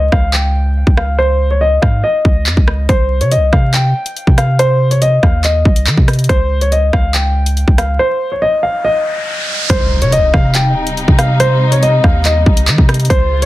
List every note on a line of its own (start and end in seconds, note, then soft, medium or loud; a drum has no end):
0.00 0.10 D#5 medium
0.12 0.84 C#2 loud
0.12 0.31 F5 medium
0.12 kick medium
0.12 cross-stick loud
0.34 0.94 G5 medium
0.34 clap loud
0.87 1.79 C#2 loud
0.87 kick medium
0.97 1.17 F5 medium
0.97 cross-stick loud
1.18 1.49 C5 loud
1.51 1.60 C#5 medium
1.61 1.80 D#5 medium
1.82 2.03 G#2 loud
1.82 2.01 F5 medium
1.82 kick loud
1.82 cross-stick loud
2.04 2.85 D#5 medium
2.25 2.48 C#2 loud
2.25 kick loud
2.46 2.56 F2 loud
2.46 clap loud
2.57 2.88 C#2 loud
2.57 kick loud
2.68 cross-stick loud
2.89 3.22 C2 loud
2.89 3.19 C5 loud
2.89 kick loud
2.89 closed hi-hat medium
3.21 3.38 C3 loud
3.21 3.31 C#5 medium
3.21 closed hi-hat medium
3.31 3.51 D#5 medium
3.31 closed hi-hat medium
3.37 3.52 C2 loud
3.53 3.94 C3 loud
3.53 3.72 F5 medium
3.53 kick loud
3.53 cross-stick loud
3.74 4.34 G5 medium
3.74 clap loud
3.74 closed hi-hat medium
4.06 closed hi-hat medium
4.17 closed hi-hat medium
4.27 5.19 C3 loud
4.27 kick medium
4.38 4.57 F5 medium
4.38 cross-stick loud
4.38 closed hi-hat medium
4.59 4.89 C5 loud
4.59 closed hi-hat medium
4.91 5.01 C#5 medium
4.91 closed hi-hat medium
5.02 5.21 D#5 medium
5.02 closed hi-hat medium
5.23 5.64 D#2 loud
5.23 5.42 F5 medium
5.23 kick loud
5.23 cross-stick loud
5.44 6.26 D#5 medium
5.44 clap medium
5.44 closed hi-hat medium
5.65 5.88 C2 loud
5.65 kick loud
5.76 closed hi-hat medium
5.87 5.97 D#3 loud
5.87 clap loud
5.87 closed hi-hat medium
5.97 6.28 C3 loud
5.97 kick medium
6.08 cross-stick loud
6.08 closed hi-hat soft
6.13 closed hi-hat soft
6.19 closed hi-hat medium
6.24 closed hi-hat medium
6.29 6.91 C#2 loud
6.29 6.59 C5 loud
6.29 kick loud
6.29 closed hi-hat medium
6.61 6.71 C#5 medium
6.61 closed hi-hat medium
6.72 6.91 D#5 medium
6.72 closed hi-hat medium
6.93 7.65 C#2 loud
6.93 7.12 F5 medium
6.93 kick loud
6.93 cross-stick loud
7.14 7.74 G5 medium
7.14 clap loud
7.14 closed hi-hat medium
7.46 closed hi-hat medium
7.57 closed hi-hat medium
7.68 7.98 C#2 loud
7.68 kick medium
7.78 7.97 F5 medium
7.78 cross-stick loud
7.78 closed hi-hat medium
7.99 8.29 C5 loud
7.99 riser medium
8.32 8.41 C#5 medium
8.42 8.61 D#5 medium
8.63 8.82 F5 medium
8.84 9.66 D#5 loud
9.70 10.03 C2 loud
9.70 13.07 C3 medium
9.70 13.07 G3 medium
9.70 13.07 D#4 medium
9.70 10.00 C5 loud
9.70 kick loud
9.70 closed hi-hat medium
9.70 impact medium
10.02 10.19 C3 loud
10.02 10.11 C#5 medium
10.02 closed hi-hat medium
10.12 10.32 D#5 medium
10.12 closed hi-hat medium
10.18 10.33 C2 loud
10.34 10.74 C3 loud
10.34 10.53 F5 medium
10.34 kick loud
10.34 cross-stick loud
10.55 11.15 G5 medium
10.55 clap loud
10.55 closed hi-hat medium
10.87 closed hi-hat medium
10.97 closed hi-hat medium
11.08 12.00 C3 loud
11.08 kick loud
11.19 11.38 F5 medium
11.19 cross-stick loud
11.19 closed hi-hat medium
11.40 11.70 C5 loud
11.40 closed hi-hat medium
11.72 11.81 C#5 medium
11.72 closed hi-hat medium
11.83 12.02 D#5 medium
11.83 closed hi-hat medium
12.04 12.45 D#2 loud
12.04 12.23 F5 medium
12.04 kick loud
12.04 cross-stick loud
12.25 13.06 D#5 medium
12.25 clap medium
12.25 closed hi-hat medium
12.46 12.69 C2 loud
12.46 kick loud
12.57 closed hi-hat loud
12.68 12.78 D#3 loud
12.68 clap loud
12.68 closed hi-hat medium
12.78 13.09 C3 loud
12.78 kick loud
12.89 cross-stick loud
12.89 closed hi-hat soft
12.94 closed hi-hat medium
13.00 closed hi-hat medium
13.05 closed hi-hat medium
13.10 13.46 C#2 loud
13.10 13.46 C#3 medium
13.10 13.46 G#3 medium
13.10 13.46 F4 medium
13.10 13.40 C5 loud
13.10 kick loud
13.10 closed hi-hat medium
13.42 13.46 C#5 medium
13.42 closed hi-hat medium